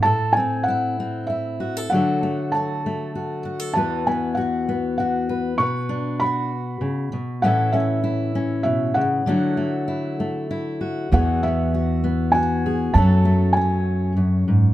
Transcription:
<<
  \new Staff \with { instrumentName = "Felt piano" } { \time 3/4 \key e \mixolydian \tempo 4 = 98 a''8 gis''8 fis''4 e''4 | fis''4 a''4. r8 | a''8 gis''8 fis''4 fis''4 | cis'''4 b''4. r8 |
fis''8 e''4. e''8 fis''8~ | fis''2 r4 | fis''8 e''4. gis''4 | a''4 gis''4 r4 | }
  \new Staff \with { instrumentName = "Steel-string acoustic guitar" } { \time 3/4 \key e \mixolydian << { a'8 c'8 e'8 c'8 e'8 fis'16 a'16 | <fis a fis' a'>8 a8 fis'8 a8 fis'8 fis'16 a'16 | <e b fis' b'>8 b8 fis'8 b8 fis'8 b'8 | b'8 d'8 fis'2 |
<e cis' e' a'>8 cis'8 e'8 cis'4. | <fis a e' fis'>8 a8 e'8 a8 e'8 fis'8 | <e b fis' gis'>8 b8 fis'8 b8 fis'8 gis'8 | <fis a cis' a'>8 a8 cis'2 | } \\ { a,2. | d2. | e,2. | b,2 cis8 b,8 |
a,2 b,8 cis8 | d2. | e,2. | fis,2 fis,8 gis,8 | } >> }
  \new Staff \with { instrumentName = "Upright bass" } { \clef bass \time 3/4 \key e \mixolydian r2. | r2. | r2. | r2. |
r2. | r2. | e,2. | fis,2. | }
>>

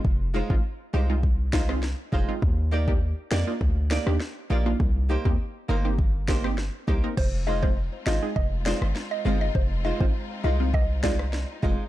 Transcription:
<<
  \new Staff \with { instrumentName = "Synth pluck" } { \time 4/4 \key f \dorian \tempo 4 = 101 r1 | r1 | r1 | c''16 r16 ees''16 c''16 r8 ees''16 r16 ees''16 r16 d''16 r8 ees''16 r16 ees''16 |
c''16 r16 ees''16 c''16 r8 ees''16 r16 ees''16 r16 d''16 r8. ees''16 r16 | }
  \new Staff \with { instrumentName = "Nylon-string guitar" } { \time 4/4 \key f \dorian r8 <aes ees' f' c''>8 r8 <aes ees' f' c''>8 r8 <aes ees' f' c''>8 r8 <aes ees' f' c''>8 | r8 <bes ees' g' d''>8 r8 <bes ees' g' d''>8 r8 <bes ees' g' d''>8 r8 <bes ees' g' d''>8 | r8 <bes ees' g' c''>8 r8 <bes ees' g' c''>8 r8 <bes ees' g' c''>8 r8 <bes ees' g' c''>8 | r8 <aes ees' f' c''>8 r8 <aes ees' f' c''>8 r8 <aes ees' f' c''>8 r8 <aes ees' f' c''>8 |
r8 <aes ees' f' c''>8 r8 <aes ees' f' c''>8 r8 <aes ees' f' c''>8 r8 <aes ees' f' c''>8 | }
  \new Staff \with { instrumentName = "Synth stab" } { \time 4/4 \key f \dorian r8 <ees' f'>16 <aes c' ees' f'>16 r8 <ees' g'>16 <aes c' ees' f'>16 r8 <ees' f'>16 <aes c' ees' f'>16 r8 <ees' f'>16 <aes c' ees' f'>16 | r8 <ees' g'>16 <bes d' ees' g'>16 r8 <ees' g'>16 <bes d' ees' f'>16 r8 <ees' g'>16 <bes d' ees' g'>16 r8 <ees' f'>16 <bes d' ees' f'>16 | r8 <ees' g'>16 <bes c' ees' g'>16 r8 <ees' bes'>16 <bes c' ees' g'>16 r8 <ees' g'>16 <bes c' ees' g'>16 r8 <ees' g'>16 <bes c' ees' bes'>16 | r8 <ees' f'>16 <aes c' ees' f'>16 r8 <ees' f'>16 <aes c' ees' aes'>16 r8 <aes c' ees' f'>16 r8. <aes c' ees' f'>16 r16 |
r8 <ees' f'>16 <aes c' ees' f'>16 r8 <ees' f'>16 <aes c' ees' f'>16 r8 <aes c' ees' f'>16 r8. <aes c' ees' f'>16 r16 | }
  \new Staff \with { instrumentName = "String section" } { \time 4/4 \key f \dorian r1 | r1 | r1 | <aes c' ees' f'>1~ |
<aes c' ees' f'>1 | }
  \new Staff \with { instrumentName = "808-style bass" } { \clef bass \time 4/4 \key f \dorian f,,8. aes,,16 r8 c,4.~ c,16 r16 f,,16 r16 | ees,4~ ees,16 r16 f,16 r16 d,8. ees,16 r8 bes,,8 | c,8. ees,16 r8 g,,4.~ g,,16 r16 c,16 r16 | f,,4~ f,,16 r16 aes,,16 r16 f,,8. g,,16 r8 g,,8 |
f,,8. aes,,16 r8 c,4.~ c,16 r16 f,,16 r16 | }
  \new DrumStaff \with { instrumentName = "Drums" } \drummode { \time 4/4 bd8. bd16 r4 bd8 <bd sn>16 ss16 sn8 bd8 | bd8. bd16 r8 sn8 bd8 sn16 ss16 sn4 | bd8. bd16 r4 bd8 <bd sn>16 ss16 sn8 bd8 | <cymc bd>8. bd16 r8 sn8 bd8 sn16 ss16 sn4 |
bd8. bd16 r4 bd8 <bd sn>16 ss16 sn8 bd8 | }
>>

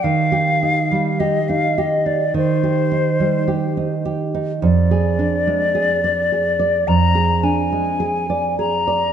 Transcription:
<<
  \new Staff \with { instrumentName = "Flute" } { \time 4/4 \key c \minor \tempo 4 = 53 f''4 ees''16 f''16 ees''16 d''16 c''4. r8 | d''2 bes''8 aes''4 bes''8 | }
  \new Staff \with { instrumentName = "Nylon-string guitar" } { \time 4/4 \key c \minor ees16 g'16 ees'16 g16 g'16 ees'16 g'16 ees'16 ees16 g'16 ees'16 g16 g'16 ees'16 g'16 ees'16 | f,16 aes'16 d'16 aes16 aes'16 d''16 aes'16 d''16 f,16 aes'16 d'16 aes16 aes'16 d''16 aes'16 d''16 | }
>>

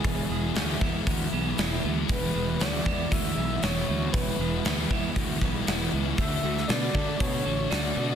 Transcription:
<<
  \new Staff \with { instrumentName = "Soft synth lead" } { \time 4/4 \key e \mixolydian \tempo 4 = 118 gis'4. r2 r8 | b'4 d''4 e''4 cis''4 | b'4. r2 r8 | e''4 d''4 cis''4 d''4 | }
  \new Staff \with { instrumentName = "Twelve-string acoustic guitar" } { \time 4/4 \key e \mixolydian <e b e'>8 gis'8 e'8 e8 e'8 b8 e'8 e8 | e8 gis'8 e'8 e8 e'8 b8 e'8 e8 | e8 gis'8 e'8 e8 e'8 b8 e'8 e8 | a8 fis'8 d'8 a8 d'8 a8 d'8 a8 | }
  \new Staff \with { instrumentName = "Distorted electric guitar" } { \time 4/4 \key e \mixolydian <e, e b e'>8 gis8 b8 gis8 e8 b8 e'8 b8 | e,8 gis8 b8 gis8 e8 b8 e'8 b8 | e,8 gis8 b8 gis8 e8 b8 e'8 b8 | d8 a8 d'8 a8 d8 d'8 fis'8 d'8 | }
  \new Staff \with { instrumentName = "Overdriven electric guitar" } { \time 4/4 \key e \mixolydian <e gis b e'>8 gis8 e'8 b8 e8 b8 e'8 gis8 | e8 gis8 e'8 b8 e8 b8 e'8 gis8 | e8 gis8 e'8 b8 e8 b8 e'8 gis8 | d8 a8 fis'8 d'8 d8 d'8 fis'8 a8 | }
  \new Staff \with { instrumentName = "Fingered electric bass" } { \clef bass \time 4/4 \key e \mixolydian e,,8 e,,8 d,8 e,8 d,8 b,,8 e,,8 d,8 | e,,8 e,,8 d,8 e,8 d,8 b,,8 e,,8 d,8 | e,,8 e,,8 d,8 e,8 d,8 b,,8 e,,8 cis,8 | d,8 d,8 b,8 d8 b,8 a,,8 d,8 b,8 | }
  \new DrumStaff \with { instrumentName = "Drums" } \drummode { \time 4/4 <hho bd>4 <hho sn>8 bd8 <hho bd>4 <hho sn>4 | <hho bd>4 <hho sn>8 bd8 <hho bd>4 <hho sn>4 | <hho bd>4 <hho sn>8 bd8 <hho bd>8 bd8 <hho sn>4 | <hho bd>8. sn16 <hho sn>8 bd8 <hho bd>4 <hho sn>4 | }
>>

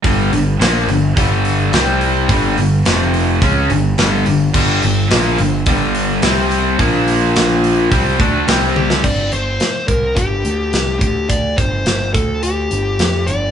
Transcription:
<<
  \new Staff \with { instrumentName = "Lead electric guitar" } { \time 4/4 \key g \minor \tempo 4 = 107 r1 | r1 | r1 | r2. r8 g'8 |
d''8 c''4 bes'8 g'4. g'8 | d''8 c''4 a'8 g'4. d''8 | }
  \new Staff \with { instrumentName = "Distorted electric guitar" } { \clef bass \time 4/4 \key g \minor <g, d g>8 <g, d>8 <bes, f bes>8 <g, d>8 <g, d g>4 <c g c'>4 | <g, d g>8 <g, d>8 <f, c f>4 <cis aes cis'>8 <g, d>8 <g, d g>8 <g, d>8 | <g, d g>8 <g, d>8 <bes, f bes>8 <g, d>8 <g, d g>4 <c g c'>4 | <bes, f bes>2 <c g c'>8 <d a d'>8 <c g c'>4 |
r1 | r1 | }
  \new Staff \with { instrumentName = "Overdriven electric guitar" } { \clef bass \time 4/4 \key g \minor <g, d g>8 <g, d>8 <bes, f bes>8 <g, d>8 <g, d g>4 <c g c'>4 | <g, d g>8 <g, d>8 <f, c f>4 <cis aes cis'>8 <g, d>8 <g, d g>8 <g, d>8 | <g, d g>8 <g, d>8 <bes, f bes>8 <g, d>8 <g, d g>4 <c g c'>4 | <bes, f bes>2 <c g c'>8 <d a d'>8 <c g c'>4 |
r1 | r1 | }
  \new Staff \with { instrumentName = "Picked electric bass" } { \clef bass \time 4/4 \key g \minor g,,8 g,,8 bes,,8 g,,8 g,,4 c,4 | g,,8 g,,8 f,,4 cis,8 g,,8 g,,8 g,,8 | g,,8 g,,8 bes,,8 g,,8 g,,4 c,4 | bes,,2 c,8 d,8 c,4 |
g,,8 g,,8 r8 c,8 g,,8 d,8 c,8 d,8~ | d,8 g,,8 g,,8 d,4 g,,8 f,8 g,,8 | }
  \new DrumStaff \with { instrumentName = "Drums" } \drummode { \time 4/4 <hho bd>8 hho8 <hho sn>8 hho8 <hho bd>8 hho8 <hho sn>8 hho8 | <hho bd>8 hho8 <hho sn>8 hho8 <hho bd>8 hho8 <hho sn>8 hho8 | <cymc bd>8 hho8 <hho sn>8 hho8 <hho bd>8 hho8 <hho sn>8 hho8 | <hho bd>8 hho8 <hho sn>8 hho8 <hho bd>8 <hho bd>8 <hho sn>8 tommh16 sn16 |
<cymc bd>8 hh8 <hh sn>8 <hh bd>8 <hh bd>8 hh8 <hh sn>8 <hh bd>8 | <hh bd>8 <hh bd>8 <hh sn>8 <hh bd>8 hh8 hh8 <hh sn>8 hh8 | }
>>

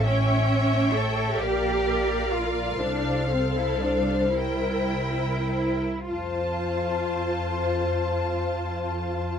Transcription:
<<
  \new Staff \with { instrumentName = "Violin section" } { \time 6/8 \key f \major \tempo 4. = 37 g''4. f''4.~ | f''4. g''4~ g''16 r16 | a''2. | }
  \new Staff \with { instrumentName = "Violin section" } { \time 6/8 \key f \major e''4. d''4. | c''2~ c''8. r16 | c''2. | }
  \new Staff \with { instrumentName = "Viola section" } { \time 6/8 \key f \major cis''4. bes'4. | a'4. bes'4~ bes'16 r16 | f'2. | }
  \new Staff \with { instrumentName = "Cello section" } { \time 6/8 \key f \major cis'4 a'8 g'4 f'8 | d'8 c'16 e'16 d'8 e'4. | f'2. | }
  \new Staff \with { instrumentName = "Double bass section" } { \clef bass \time 6/8 \key f \major a,,4. bes,,4. | c,2~ c,8. r16 | f,2. | }
>>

